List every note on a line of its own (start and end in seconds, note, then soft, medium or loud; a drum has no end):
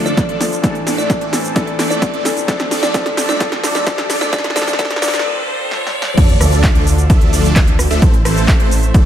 0.00 0.62 D2 medium
0.00 0.62 D3 medium
0.00 0.26 F3 medium
0.00 0.40 F3 medium
0.00 0.26 A3 medium
0.00 0.40 A3 medium
0.00 0.26 D4 medium
0.00 0.41 D4 medium
0.00 0.62 F4 medium
0.00 0.26 A4 medium
0.00 0.41 A4 loud
0.00 0.62 A4 medium
0.00 0.26 D5 loud
0.00 riser medium
0.06 0.18 D5 medium
0.06 closed hi-hat soft
0.06 cabasa soft
0.17 kick loud
0.17 snare medium
0.17 closed hi-hat medium
0.17 cabasa soft
0.29 0.41 F3 loud
0.29 0.41 A3 medium
0.29 0.41 D4 medium
0.29 0.41 A4 medium
0.29 0.41 D5 loud
0.29 closed hi-hat soft
0.40 0.51 F3 medium
0.40 0.51 A3 medium
0.40 0.51 D4 medium
0.40 0.51 A4 medium
0.40 snare medium
0.40 open hi-hat loud
0.40 cabasa medium
0.52 closed hi-hat soft
0.52 cabasa soft
0.62 2.46 A2 medium
0.62 1.29 E3 medium
0.62 0.75 E3 medium
0.62 2.46 E3 medium
0.62 1.30 A3 medium
0.62 0.75 A3 medium
0.62 2.46 C4 medium
0.62 0.75 D4 medium
0.62 1.30 D4 medium
0.62 0.75 A4 medium
0.62 2.46 A4 medium
0.62 1.31 A4 loud
0.62 0.75 D5 medium
0.62 kick loud
0.62 snare medium
0.62 closed hi-hat medium
0.62 cabasa soft
0.75 closed hi-hat soft
0.86 1.18 E3 medium
0.86 1.18 A3 medium
0.86 1.18 D4 medium
0.86 1.18 A4 medium
0.86 1.18 D5 loud
0.86 snare medium
0.86 open hi-hat loud
0.86 cabasa medium
0.98 1.10 D5 medium
0.98 closed hi-hat soft
0.98 cabasa soft
1.10 kick loud
1.10 snare medium
1.10 closed hi-hat medium
1.10 cabasa soft
1.21 1.33 E3 medium
1.21 1.33 A3 medium
1.21 1.33 D4 medium
1.21 1.33 A4 medium
1.21 1.33 D5 loud
1.21 closed hi-hat soft
1.32 1.43 E3 medium
1.32 1.43 A3 medium
1.32 1.43 D4 medium
1.32 1.44 A4 medium
1.32 snare medium
1.32 open hi-hat loud
1.32 cabasa medium
1.44 closed hi-hat soft
1.44 cabasa soft
1.55 2.22 E3 loud
1.55 1.68 E3 medium
1.55 2.22 A3 medium
1.55 1.68 A3 medium
1.55 1.68 D4 medium
1.55 2.23 D4 medium
1.55 1.68 A4 medium
1.55 2.23 A4 loud
1.55 1.68 D5 loud
1.55 kick loud
1.55 snare medium
1.55 closed hi-hat medium
1.55 cabasa soft
1.67 closed hi-hat soft
1.79 2.11 E3 medium
1.79 2.11 A3 medium
1.79 2.11 D4 medium
1.79 2.11 A4 medium
1.79 2.11 D5 loud
1.79 snare medium
1.79 open hi-hat loud
1.79 cabasa medium
1.90 2.03 D5 medium
1.90 closed hi-hat soft
1.90 cabasa soft
2.02 kick loud
2.02 snare medium
2.02 closed hi-hat medium
2.02 cabasa soft
2.14 2.25 E3 loud
2.14 2.25 A3 medium
2.14 2.25 D4 medium
2.14 2.25 A4 medium
2.14 2.25 D5 loud
2.14 closed hi-hat soft
2.25 2.35 E3 medium
2.25 2.36 A3 medium
2.25 2.36 D4 medium
2.25 2.36 A4 medium
2.25 snare medium
2.25 open hi-hat loud
2.25 cabasa medium
2.37 closed hi-hat soft
2.37 cabasa soft
2.47 4.31 G2 medium
2.47 2.92 F3 loud
2.47 2.60 F3 medium
2.47 4.31 G3 medium
2.47 2.92 A3 medium
2.47 2.60 A3 medium
2.47 2.60 D4 medium
2.47 4.31 D4 medium
2.47 2.93 D4 medium
2.47 2.60 A4 medium
2.47 2.93 A4 loud
2.47 2.60 D5 loud
2.47 kick loud
2.47 snare loud
2.47 closed hi-hat medium
2.47 cabasa soft
2.60 snare medium
2.60 closed hi-hat soft
2.71 2.92 F3 medium
2.71 2.92 A3 medium
2.71 2.92 D4 medium
2.71 2.92 A4 medium
2.71 2.92 D5 loud
2.71 snare medium
2.71 open hi-hat loud
2.71 cabasa medium
2.83 2.92 D5 medium
2.83 snare medium
2.83 closed hi-hat soft
2.83 cabasa soft
2.93 3.38 F3 loud
2.93 3.06 F3 medium
2.93 3.38 A3 medium
2.93 3.06 A3 medium
2.93 3.06 D4 medium
2.93 3.39 D4 medium
2.93 3.06 A4 medium
2.93 3.39 A4 loud
2.93 3.06 D5 loud
2.93 kick loud
2.93 snare loud
2.93 closed hi-hat loud
2.93 cabasa soft
3.06 snare medium
3.06 closed hi-hat soft
3.17 3.39 F3 loud
3.17 3.39 A3 medium
3.17 3.39 D4 medium
3.17 3.39 A4 medium
3.17 3.39 D5 loud
3.17 snare medium
3.17 open hi-hat loud
3.17 cabasa medium
3.29 3.39 D5 medium
3.29 snare medium
3.29 closed hi-hat soft
3.29 cabasa soft
3.39 3.84 F3 loud
3.39 3.52 F3 medium
3.39 3.85 A3 loud
3.39 3.52 A3 medium
3.39 3.52 D4 medium
3.39 3.85 D4 loud
3.39 3.52 A4 medium
3.39 3.85 A4 loud
3.39 3.52 D5 loud
3.39 kick loud
3.39 snare loud
3.39 closed hi-hat medium
3.39 cabasa soft
3.52 snare medium
3.52 closed hi-hat soft
3.63 3.85 F3 medium
3.63 3.85 A3 medium
3.63 3.85 D4 medium
3.63 3.85 A4 medium
3.63 3.85 D5 loud
3.63 snare loud
3.63 open hi-hat loud
3.63 cabasa medium
3.75 3.85 D5 medium
3.75 snare medium
3.75 closed hi-hat soft
3.75 cabasa soft
3.85 4.30 F3 loud
3.85 3.98 F3 medium
3.85 4.31 A3 medium
3.85 3.98 D4 medium
3.85 4.31 D4 medium
3.85 4.31 A4 loud
3.85 3.98 D5 loud
3.85 kick loud
3.85 snare loud
3.85 closed hi-hat loud
3.85 cabasa soft
3.98 snare medium
3.98 closed hi-hat soft
4.10 4.31 F3 loud
4.10 4.31 A3 medium
4.10 4.31 D4 medium
4.10 4.31 A4 medium
4.10 4.31 D5 loud
4.10 snare loud
4.10 open hi-hat loud
4.10 cabasa medium
4.21 4.31 D5 medium
4.21 snare medium
4.21 closed hi-hat soft
4.21 cabasa soft
4.32 6.16 F2 medium
4.32 4.53 F3 loud
4.32 6.16 F3 medium
4.32 4.54 A3 medium
4.32 6.16 C4 medium
4.32 4.54 D4 medium
4.32 6.16 A4 medium
4.32 4.55 A4 loud
4.32 4.45 D5 loud
4.32 kick loud
4.32 snare loud
4.32 closed hi-hat loud
4.32 cabasa soft
4.38 snare loud
4.44 snare medium
4.44 closed hi-hat soft
4.50 snare medium
4.55 4.76 F3 loud
4.55 4.68 F3 medium
4.55 4.77 A3 loud
4.55 4.68 A3 medium
4.55 4.68 D4 medium
4.55 4.77 D4 loud
4.55 4.68 A4 medium
4.55 4.78 A4 loud
4.55 4.68 D5 loud
4.55 snare loud
4.55 open hi-hat loud
4.55 cabasa medium
4.62 snare medium
4.67 snare medium
4.67 closed hi-hat soft
4.67 cabasa soft
4.73 snare medium
4.78 4.99 F3 loud
4.78 4.91 F3 medium
4.78 5.00 A3 medium
4.78 4.91 A3 medium
4.78 4.91 D4 medium
4.78 5.00 D4 medium
4.78 4.91 A4 medium
4.78 5.01 A4 loud
4.78 4.91 D5 medium
4.78 4.91 D5 loud
4.78 kick loud
4.78 snare loud
4.78 closed hi-hat loud
4.78 cabasa soft
4.85 snare medium
4.91 snare medium
4.91 closed hi-hat soft
4.96 snare medium
5.01 5.23 F3 loud
5.01 5.14 F3 loud
5.01 5.23 A3 medium
5.01 5.14 A3 medium
5.01 5.14 D4 medium
5.01 5.23 D4 loud
5.01 5.14 A4 medium
5.01 5.24 A4 loud
5.01 5.14 D5 medium
5.01 5.14 D5 loud
5.01 snare loud
5.01 open hi-hat loud
5.01 cabasa medium
5.08 snare medium
5.14 snare loud
5.14 closed hi-hat soft
5.14 cabasa soft
5.19 snare loud
5.71 snare medium
5.87 snare medium
6.02 snare loud
6.17 6.38 D2 loud
6.17 8.00 D3 medium
6.17 6.29 F3 medium
6.17 6.29 A3 medium
6.17 8.00 D4 medium
6.17 6.29 D4 medium
6.17 8.00 F4 medium
6.17 8.00 A4 loud
6.17 6.29 A4 medium
6.17 6.29 D5 loud
6.17 kick loud
6.17 closed hi-hat loud
6.17 crash loud
6.17 sub drop medium
6.17 cabasa soft
6.29 closed hi-hat soft
6.41 6.73 D2 loud
6.41 6.72 F3 loud
6.41 6.72 A3 medium
6.41 6.72 D4 medium
6.41 6.72 A4 medium
6.41 6.72 D5 loud
6.41 cross-stick medium
6.41 open hi-hat loud
6.41 cabasa medium
6.52 closed hi-hat soft
6.52 cabasa soft
6.64 kick loud
6.64 clap loud
6.64 closed hi-hat loud
6.64 cabasa soft
6.75 7.07 D2 loud
6.75 6.87 F3 loud
6.75 6.87 A3 medium
6.75 6.87 D4 loud
6.75 6.87 A4 medium
6.75 6.87 D5 loud
6.75 closed hi-hat soft
6.87 open hi-hat loud
6.87 cabasa medium
6.98 closed hi-hat soft
6.98 cabasa soft
7.10 7.31 D2 medium
7.10 7.30 F3 medium
7.10 7.30 A3 medium
7.10 7.30 D4 medium
7.10 7.30 A4 medium
7.10 7.30 E5 loud
7.10 kick loud
7.10 closed hi-hat loud
7.10 cabasa soft
7.21 closed hi-hat soft
7.33 7.54 D2 loud
7.33 7.53 F3 medium
7.33 7.53 A3 medium
7.33 7.53 D4 medium
7.33 7.53 A4 medium
7.33 7.53 D5 loud
7.33 open hi-hat loud
7.33 cabasa medium
7.44 closed hi-hat soft
7.44 cabasa soft
7.56 7.88 D2 loud
7.56 7.68 F3 medium
7.56 7.68 A3 medium
7.56 7.68 A4 medium
7.56 7.68 E5 loud
7.56 kick loud
7.56 clap loud
7.56 closed hi-hat loud
7.56 cabasa soft
7.67 closed hi-hat soft
7.79 cross-stick medium
7.79 open hi-hat loud
7.79 cabasa medium
7.90 8.00 D2 loud
7.90 8.00 F3 medium
7.90 8.00 A3 medium
7.90 8.00 D4 medium
7.90 8.00 A4 medium
7.90 8.00 E5 loud
7.90 closed hi-hat soft
7.90 cabasa soft
8.02 8.23 A1 loud
8.02 8.14 E3 medium
8.02 8.14 A3 medium
8.02 9.05 A3 medium
8.02 8.14 C4 medium
8.02 8.14 A4 medium
8.02 9.05 A4 medium
8.02 8.14 C5 loud
8.02 9.05 C5 medium
8.02 9.05 E5 loud
8.02 kick loud
8.02 closed hi-hat loud
8.02 cabasa soft
8.14 closed hi-hat soft
8.25 8.57 A1 loud
8.25 8.57 E3 loud
8.25 8.57 A3 medium
8.25 8.57 C4 medium
8.25 8.57 A4 medium
8.25 8.57 C5 loud
8.25 cross-stick medium
8.25 open hi-hat loud
8.25 cabasa medium
8.37 closed hi-hat soft
8.37 cabasa soft
8.48 kick loud
8.48 clap loud
8.48 closed hi-hat medium
8.48 cabasa soft
8.60 8.92 A1 loud
8.60 8.71 E3 loud
8.60 8.71 A3 loud
8.60 8.71 C4 medium
8.60 8.71 A4 medium
8.60 8.71 C5 loud
8.60 closed hi-hat soft
8.71 open hi-hat loud
8.71 cabasa medium
8.83 closed hi-hat soft
8.83 cabasa soft
8.94 9.05 A1 medium
8.94 9.05 E3 medium
8.94 9.05 A3 medium
8.94 9.05 C4 medium
8.94 9.05 A4 medium
8.94 9.05 D5 loud
8.94 kick loud
8.94 closed hi-hat medium
8.94 cabasa soft